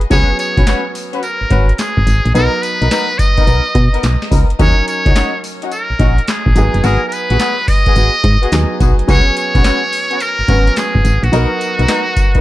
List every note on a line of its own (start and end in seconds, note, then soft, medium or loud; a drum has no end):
0.01 closed hi-hat medium
0.10 0.24 C#2 loud
0.10 2.31 F#3 medium
0.10 2.31 B3 medium
0.10 0.28 C#4 loud
0.10 2.32 C#4 medium
0.10 0.28 F#4 medium
0.10 2.32 G#4 medium
0.10 0.28 B4 loud
0.10 0.37 C#5 loud
0.10 kick loud
0.10 closed hi-hat medium
0.10 tambourine medium
0.39 0.91 C#5 loud
0.39 closed hi-hat medium
0.39 tambourine medium
0.57 0.64 B1 medium
0.57 0.66 C#4 medium
0.57 0.66 F#4 medium
0.57 0.66 B4 medium
0.57 kick loud
0.57 closed hi-hat medium
0.67 0.84 C#4 medium
0.67 0.84 F#4 medium
0.67 0.84 B4 medium
0.67 snare loud
0.67 clap loud
0.67 closed hi-hat medium
0.67 tambourine loud
0.95 open hi-hat medium
0.95 tambourine medium
1.13 1.22 C#4 medium
1.13 1.22 F#4 medium
1.13 1.22 B4 medium
1.13 closed hi-hat medium
1.23 1.75 A#4 loud
1.23 closed hi-hat medium
1.23 tambourine medium
1.41 1.45 G#1 soft
1.51 1.71 G#1 medium
1.51 1.68 C#4 medium
1.51 1.68 F#4 medium
1.51 1.68 B4 medium
1.51 kick loud
1.51 closed hi-hat medium
1.69 closed hi-hat medium
1.75 1.81 A#4 medium
1.75 closed hi-hat medium
1.79 2.34 G#4 loud
1.79 snare loud
1.79 clap medium
1.79 tambourine medium
1.97 2.04 G#1 medium
1.97 kick medium
2.07 2.20 G#1 loud
2.07 closed hi-hat medium
2.07 tambourine medium
2.26 2.33 A#1 medium
2.26 closed hi-hat medium
2.34 2.48 B1 loud
2.34 4.55 F#3 medium
2.34 2.52 B3 loud
2.34 4.55 B3 medium
2.34 2.52 D#4 medium
2.34 4.56 D#4 medium
2.34 2.64 A#4 loud
2.34 2.52 A#4 loud
2.34 4.56 B4 medium
2.34 closed hi-hat medium
2.34 tambourine medium
2.62 3.20 B4 loud
2.62 closed hi-hat medium
2.62 tambourine medium
2.81 2.89 B1 medium
2.81 2.90 B3 medium
2.81 2.90 D#4 medium
2.81 2.90 A#4 medium
2.81 closed hi-hat medium
2.91 3.08 B3 medium
2.91 3.08 D#4 medium
2.91 3.08 A#4 medium
2.91 snare loud
2.91 clap loud
2.91 closed hi-hat medium
2.91 tambourine medium
3.19 4.31 D#5 loud
3.19 kick medium
3.19 closed hi-hat medium
3.19 tambourine medium
3.37 3.46 B3 medium
3.37 3.46 D#4 medium
3.37 3.46 A#4 medium
3.37 kick medium
3.37 closed hi-hat medium
3.47 3.61 B1 medium
3.47 3.64 B3 medium
3.47 3.64 D#4 medium
3.47 3.64 A#4 medium
3.47 closed hi-hat medium
3.47 tambourine medium
3.75 3.89 B2 loud
3.75 kick medium
3.75 closed hi-hat medium
3.93 4.02 B3 medium
3.93 4.02 D#4 medium
3.93 4.02 A#4 medium
3.93 closed hi-hat medium
4.03 4.17 B1 medium
4.03 snare loud
4.03 clap medium
4.03 closed hi-hat medium
4.03 tambourine medium
4.22 snare medium
4.31 4.45 C#2 loud
4.31 4.48 B3 medium
4.31 4.48 D#4 medium
4.31 4.48 A#4 medium
4.31 kick medium
4.31 open hi-hat medium
4.31 tambourine medium
4.50 closed hi-hat medium
4.59 4.73 D#2 loud
4.59 6.52 F#3 medium
4.59 4.76 C#4 loud
4.59 6.52 C#4 medium
4.59 4.76 D#4 medium
4.59 6.52 D#4 medium
4.59 4.76 F#4 loud
4.59 6.53 A#4 medium
4.59 4.86 C#5 loud
4.59 kick loud
4.59 closed hi-hat medium
4.59 tambourine medium
4.88 5.40 C#5 loud
4.88 closed hi-hat medium
4.88 tambourine medium
5.06 5.13 C#2 medium
5.06 5.14 C#4 medium
5.06 5.15 D#4 medium
5.06 5.15 F#4 medium
5.06 kick loud
5.06 closed hi-hat medium
5.15 5.32 C#4 medium
5.15 5.32 D#4 medium
5.15 5.32 F#4 medium
5.15 snare loud
5.15 clap loud
5.15 closed hi-hat medium
5.15 tambourine loud
5.44 open hi-hat medium
5.44 tambourine medium
5.62 5.71 C#4 medium
5.62 5.71 D#4 medium
5.62 5.71 F#4 medium
5.62 closed hi-hat medium
5.72 6.30 A#4 loud
5.72 closed hi-hat medium
5.72 tambourine medium
5.90 5.94 A#1 soft
5.99 6.20 A#1 loud
5.99 6.16 C#4 medium
5.99 6.16 D#4 medium
5.99 6.17 F#4 medium
5.99 kick medium
5.99 closed hi-hat medium
6.18 closed hi-hat medium
6.28 6.86 G#4 loud
6.28 snare loud
6.28 clap loud
6.28 closed hi-hat medium
6.28 tambourine medium
6.46 6.53 A#1 medium
6.46 kick medium
6.55 6.69 G#1 loud
6.55 8.48 F#3 medium
6.55 8.48 B3 medium
6.55 8.49 D#4 medium
6.55 8.49 G#4 medium
6.55 closed hi-hat medium
6.55 tambourine medium
6.74 6.81 F#1 medium
6.74 closed hi-hat medium
6.84 6.97 G#1 loud
6.84 7.00 B3 loud
6.84 7.01 F#4 medium
6.84 7.01 G#4 loud
6.84 7.07 A#4 loud
6.84 closed hi-hat medium
6.84 tambourine medium
7.08 7.14 A#4 medium
7.12 7.70 B4 loud
7.12 closed hi-hat medium
7.12 tambourine medium
7.30 7.37 A#1 medium
7.30 7.39 B3 medium
7.30 7.39 F#4 medium
7.30 7.39 G#4 medium
7.30 closed hi-hat medium
7.40 7.56 B3 medium
7.40 7.57 F#4 medium
7.40 7.57 G#4 medium
7.40 snare loud
7.40 clap loud
7.40 closed hi-hat medium
7.40 tambourine loud
7.68 8.80 D#5 loud
7.68 kick medium
7.68 open hi-hat medium
7.68 tambourine medium
7.86 7.95 B3 medium
7.86 7.95 F#4 medium
7.86 7.95 G#4 medium
7.86 kick loud
7.86 closed hi-hat medium
7.96 8.10 G#1 medium
7.96 8.13 B3 medium
7.96 8.13 F#4 medium
7.96 8.13 G#4 medium
7.96 closed hi-hat medium
7.96 tambourine medium
8.24 8.37 G#2 loud
8.24 kick loud
8.24 closed hi-hat medium
8.42 8.51 B3 medium
8.42 8.51 F#4 medium
8.42 8.51 G#4 medium
8.42 closed hi-hat medium
8.52 8.66 D#2 loud
8.52 9.06 F#3 medium
8.52 9.07 B3 medium
8.52 9.09 D#4 medium
8.52 9.08 G#4 medium
8.52 snare loud
8.52 clap medium
8.52 closed hi-hat medium
8.52 tambourine loud
8.80 8.94 B1 loud
8.80 8.97 B3 medium
8.80 8.97 F#4 medium
8.80 8.97 G#4 medium
8.80 kick loud
8.80 closed hi-hat medium
8.80 tambourine medium
8.99 closed hi-hat medium
9.07 9.22 C#2 loud
9.07 10.45 F#3 medium
9.07 10.45 B3 medium
9.07 9.25 B3 loud
9.07 9.25 C#4 medium
9.07 10.46 C#4 medium
9.07 9.25 F#4 loud
9.07 10.46 G#4 medium
9.07 9.35 C#5 loud
9.07 kick loud
9.07 closed hi-hat medium
9.07 tambourine medium
9.37 10.23 C#5 loud
9.37 closed hi-hat medium
9.37 tambourine medium
9.55 9.62 B1 medium
9.55 9.63 B3 medium
9.55 9.63 C#4 medium
9.55 9.64 F#4 medium
9.55 kick loud
9.55 closed hi-hat medium
9.64 9.81 B3 medium
9.64 9.81 C#4 medium
9.64 9.81 F#4 medium
9.64 snare loud
9.64 clap loud
9.64 closed hi-hat medium
9.64 tambourine medium
9.93 open hi-hat medium
9.93 tambourine medium
10.11 10.19 B3 medium
10.11 10.19 C#4 medium
10.11 10.20 F#4 medium
10.11 closed hi-hat medium
10.20 10.79 A#4 loud
10.20 closed hi-hat medium
10.20 tambourine medium
10.39 10.43 G#1 medium
10.48 10.69 G#1 medium
10.48 11.30 F#3 soft
10.48 10.65 B3 medium
10.48 11.31 B3 soft
10.48 10.65 C#4 medium
10.48 11.33 C#4 soft
10.48 10.65 F#4 medium
10.48 11.33 B4 medium
10.48 kick loud
10.48 closed hi-hat medium
10.67 closed hi-hat medium
10.76 11.25 G#4 loud
10.76 snare loud
10.76 clap medium
10.76 closed hi-hat medium
10.76 tambourine medium
10.95 11.02 G#1 medium
10.95 kick medium
11.05 11.18 G#1 loud
11.05 closed hi-hat medium
11.05 tambourine medium
11.23 11.30 A#1 medium
11.23 12.41 F#4 medium
11.23 closed hi-hat medium
11.32 11.46 B1 loud
11.32 12.41 F#3 medium
11.32 11.49 B3 loud
11.32 12.41 B3 medium
11.32 11.49 D#4 medium
11.32 12.41 D#4 medium
11.32 11.49 A#4 loud
11.32 12.41 A#4 medium
11.32 closed hi-hat medium
11.32 tambourine medium
11.61 closed hi-hat medium
11.61 tambourine medium
11.79 11.86 B1 medium
11.79 11.87 B3 medium
11.79 11.87 D#4 medium
11.79 11.88 A#4 medium
11.79 closed hi-hat medium
11.88 12.05 B3 medium
11.88 12.05 D#4 medium
11.88 12.05 A#4 medium
11.88 snare loud
11.88 clap loud
11.88 closed hi-hat medium
11.88 tambourine medium
12.16 kick loud
12.16 closed hi-hat medium
12.16 tambourine medium
12.35 12.41 B3 medium
12.35 12.41 D#4 medium
12.35 12.41 A#4 medium
12.35 kick loud
12.35 closed hi-hat medium